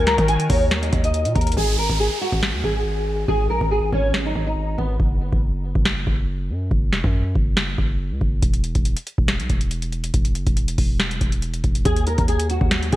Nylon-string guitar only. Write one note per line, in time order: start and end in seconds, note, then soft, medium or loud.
0.07 0.24 A#5 medium
0.28 0.46 G#5 medium
0.49 0.80 C#5 medium
0.82 1.00 D#5 medium
1.04 1.34 D#5 medium
1.35 1.53 A#4 medium
1.57 1.75 G#4 loud
1.78 1.96 A#4 medium
2.00 2.17 G#4 medium
2.21 2.61 F#4 medium
2.64 3.24 G#4 medium
3.28 3.46 G#4 loud
3.50 3.67 A#4 medium
3.71 3.89 G#4 medium
3.93 4.24 C#4 medium
4.25 4.43 D#4 medium
4.47 4.76 D#4 medium
4.78 4.96 B3 medium
11.85 12.03 G#4 loud
12.07 12.24 A#4 medium
12.28 12.46 G#4 medium
12.50 12.90 F#4 medium
12.93 12.96 G#4 medium